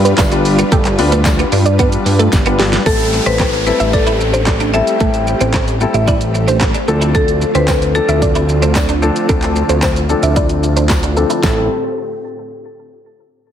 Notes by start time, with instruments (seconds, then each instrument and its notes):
Already playing: analog synth bass G2, grand piano G3 B3 D4 F4 B4, string machine G3 D4 F4 B4
0.05 synth pluck B4, closed hi-hat, shaker
0.18 analog synth bass G1, clean electric guitar E4, synth pluck D5, kick, snare, clap, closed hi-hat, tambourine, shaker
0.32 grand piano G3 B3 D4 F4 B4, muted clean electric guitar stroke, closed hi-hat, shaker
0.45 open hi-hat, shaker
0.59 clean electric guitar B3, closed hi-hat, shaker
0.72 analog synth bass G1, clean electric guitar G3, synth pluck A4, kick, closed hi-hat, shaker
0.85 clap, closed hi-hat, shaker
0.99 analog synth bass D2, grand piano G3 B3 D4 F4 B4, muted clean electric guitar stroke, open hi-hat, shaker
1.12 clean electric guitar A3, synth pluck B4, closed hi-hat, shaker
1.25 synth pluck D5, muted clean electric guitar stroke, kick, snare, clap, closed hi-hat, tambourine, shaker
1.39 clean electric guitar B3, closed hi-hat, shaker
1.52 analog synth bass G2, clean electric guitar D4, open hi-hat, shaker
1.66 synth pluck D5, closed hi-hat, shaker
1.79 grand piano G3 B3 D4 F4 B4, clean electric guitar B3, synth pluck B4, kick, closed hi-hat, shaker
1.92 closed hi-hat, shaker
2.06 analog synth bass G2, muted clean electric guitar stroke, open hi-hat, shaker
2.19 clean electric guitar A3, synth pluck A4, closed hi-hat, shaker
2.32 analog synth bass G1, kick, snare, closed hi-hat, tambourine, shaker
2.46 grand piano G3 B3 D4 F4 B4, clean electric guitar B3, closed hi-hat, shaker
2.59 synth pluck G4, muted clean electric guitar stroke, snare, open hi-hat, shaker
2.73 clean electric guitar G3, snare, closed hi-hat, shaker
2.86 analog synth bass A1, grand piano G3 C4 E4 A4, clean electric guitar A3, string machine A3 C4 G4, synth pluck A4, marimba A4, kick, closed hi-hat, downlifter, shaker
3.00 closed hi-hat, shaker
3.13 muted clean electric guitar stroke, shaker
3.26 analog synth bass A1, clean electric guitar C4, marimba B4, synth pluck C5, closed hi-hat, shaker
3.39 clean electric guitar C4, synth pluck C5, kick, snare, clap, closed hi-hat, shaker
3.53 closed hi-hat, shaker
3.66 grand piano G3 C4 E4 A4, marimba B4, muted clean electric guitar stroke, shaker
3.80 analog synth bass A1, clean electric guitar D4, synth pluck E5, closed hi-hat, shaker
3.93 marimba A4, synth pluck D5, kick, closed hi-hat, shaker
4.07 clean electric guitar E4, closed hi-hat, shaker
4.20 muted clean electric guitar stroke, shaker
4.33 clean electric guitar D4, synth pluck C5, closed hi-hat, shaker
4.46 synth pluck D5, muted clean electric guitar stroke, kick, snare, clap, closed hi-hat, shaker
4.60 clean electric guitar D4, closed hi-hat, shaker
4.74 grand piano G3 C4 E4 A4, clean electric guitar C4, marimba E5, shaker
4.87 closed hi-hat, shaker
5.00 analog synth bass A1, grand piano G3 C4 E4 G4, clean electric guitar A3, synth pluck A4, kick, closed hi-hat, shaker
5.14 closed hi-hat, shaker
5.27 muted clean electric guitar stroke, shaker
5.41 analog synth bass A1, clean electric guitar C4, synth pluck C5, closed hi-hat, shaker
5.54 clean electric guitar C4, synth pluck C5, kick, snare, clap, closed hi-hat, shaker
5.68 closed hi-hat, shaker
5.81 grand piano G3 C4 E4 A4, muted clean electric guitar stroke, shaker
5.94 analog synth bass A1, clean electric guitar D4, synth pluck E5, closed hi-hat, shaker
6.08 clean electric guitar E4, synth pluck D5, kick, closed hi-hat, shaker
6.21 closed hi-hat, shaker
6.34 muted clean electric guitar stroke, shaker
6.48 clean electric guitar D4, synth pluck C5, closed hi-hat, shaker
6.61 kick, snare, clap, closed hi-hat, shaker
6.74 clean electric guitar D4, closed hi-hat, shaker
6.88 analog synth bass D2, string machine D3 F4, grand piano F3 C4 D4 A4, synth pluck A4, muted clean electric guitar stroke, shaker
7.01 clean electric guitar E4, closed hi-hat, shaker
7.15 clean electric guitar D4, synth pluck A4, marimba A4, kick, closed hi-hat, shaker
7.28 closed hi-hat, shaker
7.42 muted clean electric guitar stroke, shaker
7.55 analog synth bass D2, clean electric guitar C4, marimba B4, synth pluck C5, closed hi-hat, shaker
7.68 clean electric guitar C4, synth pluck C5, kick, snare, clap, closed hi-hat, tambourine, shaker
7.82 closed hi-hat, shaker
7.95 grand piano F3 C4 D4 A4, marimba A4, muted clean electric guitar stroke, shaker
8.09 analog synth bass D2, clean electric guitar D4, synth pluck E5, closed hi-hat, shaker
8.22 synth pluck D5, kick, closed hi-hat, shaker
8.35 clean electric guitar E4, closed hi-hat, shaker
8.49 muted clean electric guitar stroke, shaker
8.62 clean electric guitar D4, synth pluck C5, closed hi-hat, shaker
8.75 synth pluck D5, muted clean electric guitar stroke, kick, snare, clap, closed hi-hat, tambourine, shaker
8.89 clean electric guitar D4, closed hi-hat, shaker
9.02 grand piano F3 C4 D4 A4, clean electric guitar C4, shaker
9.16 closed hi-hat, shaker
9.29 analog synth bass D2, grand piano F3 C4 D4 A4, clean electric guitar D4, synth pluck A4, kick, closed hi-hat, shaker
9.42 clap, closed hi-hat, shaker
9.56 muted clean electric guitar stroke, shaker
9.69 analog synth bass D2, clean electric guitar C4, synth pluck C5, closed hi-hat, shaker
9.82 clean electric guitar C4, synth pluck C5, kick, snare, clap, closed hi-hat, tambourine, shaker
9.96 closed hi-hat, shaker
10.09 grand piano F3 C4 D4 A4, muted clean electric guitar stroke, shaker
10.23 analog synth bass D2, clean electric guitar D4, synth pluck E5, closed hi-hat, shaker
10.36 clean electric guitar E4, synth pluck D5, kick, closed hi-hat, shaker
10.49 closed hi-hat, shaker
10.63 muted clean electric guitar stroke, shaker
10.76 clean electric guitar D4, synth pluck C5, closed hi-hat, shaker
10.89 kick, snare, clap, closed hi-hat, tambourine, shaker
11.03 clean electric guitar D4, closed hi-hat, shaker
11.16 grand piano F3 C4 D4 A4, synth pluck A4, muted clean electric guitar stroke, shaker
11.30 clean electric guitar E4, closed hi-hat, shaker
11.43 analog synth bass A1, string machine A2 A3 C4 G4, grand piano G3 C4 E4 A4, clean electric guitar E4, marimba A4, synth pluck A4, kick, snare, tambourine